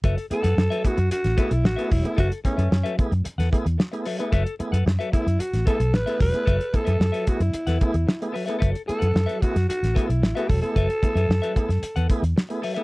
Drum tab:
HH |xxxx-xxxxxxx-xox|xxxx-xxxxxxx-xox|xxxx-xxxxxxx-xox|xxxx-xxxxxxx-xox|
SD |----o----o--o---|----o----o--o---|----o----o--o---|----o----o--o---|
BD |o-----o---o---o-|o-o---o---o-----|o-----o---o---o-|o-o---o---o-----|

HH |xxxx-xxxxxxx-xox|xxxx-xxxxxxx-xox|
SD |----o--o-o--o---|----o--o----o---|
BD |o-----o---o---o-|o-o---o---o-----|